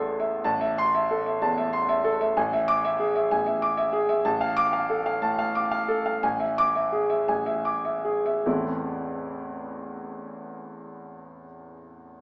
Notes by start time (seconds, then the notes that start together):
Already playing: A1 E2 A4 E5 C6
0.20 E5
0.44 A1 A5
0.61 E5
0.78 C6
0.95 E5
1.11 A4
1.26 E5
1.42 E2 A5
1.58 E5
1.73 C6
1.89 E5
2.04 A4
2.21 E5
2.37 A1 G#5
2.53 E5
2.68 D6
2.85 E5
2.99 G#4
3.15 E5
3.31 A1 G#5
3.46 E5
3.62 D6
3.77 E5
3.93 G#4
4.09 E5
4.25 A1 A5
4.41 F5
4.57 D6
4.73 F5
4.90 A4
5.06 F5
5.22 A2 A5
5.39 F5
5.55 D6
5.71 F5
5.88 A4
6.06 F5
6.23 A1 G#5
6.40 E5
6.58 D6
6.75 E5
6.92 G#4
7.10 E5
7.28 A1 G#5
7.46 E5
7.65 D6
7.85 E5
8.05 G#4
8.26 E5
8.46 A1 E2 E3 A3 C4 E4